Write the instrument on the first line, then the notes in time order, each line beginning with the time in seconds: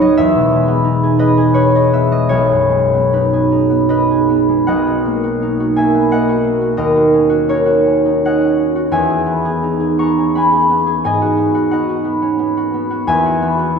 harp
Already playing: C#2 G#2 B3 C#4 D#4 F#4 B4 C#5 E5
0.01 F#3 D#5
0.17 E2 E5
0.35 B2
0.53 G#3
0.68 B3
0.84 D#4
1.03 G#4
1.19 B4 D#5
1.37 G#4
1.54 B4 C#5
1.75 G#4 D#5
1.93 B3 E5
2.11 G#3 D#5
2.29 B1 C#5
2.52 F#2
2.69 G#3
2.93 B3
3.13 D#4 B4
3.33 G#4
3.52 D#4
3.70 B3
3.89 D#4 B4 D#5
4.11 G#4
4.29 B3
4.49 G#3
4.67 B1 D#5 F#5
4.87 F#4
5.05 A#3
5.24 F#4
5.42 D#4
5.60 F#4
5.76 A#3 E5 G#5
5.95 B3
6.11 A#3 D#5 F#5
6.29 F#4
6.44 A#3
6.61 F#4
6.77 D#2 A#4 D#5
6.96 F#4
7.14 C#4
7.30 F#4
7.48 D#4 A#4 C#5
7.66 F#4
7.86 C#4
8.05 D#4
8.25 C#4 D#5 F#5
8.41 F#4
8.59 C#4
8.76 F#4
8.91 E2 E5 G#5
9.10 G#4
9.27 B3
9.45 G#4
9.63 D#4
9.80 G#4
9.98 B3 A#5 C#6
10.18 C#4
10.35 B3 G#5 B5
10.52 G#4
10.71 B3
10.86 G#4
11.04 G#2 D#5 G#5
11.22 F#4
11.38 B3
11.55 F#4
11.71 D#4 D#5 F#5
11.89 F#4
12.05 B3
12.22 C#4
12.39 B3
12.57 F#4
12.74 B3
12.90 F#4
13.07 E2 E5 G#5
13.26 F#4
13.42 B3
13.59 F#4
13.76 E4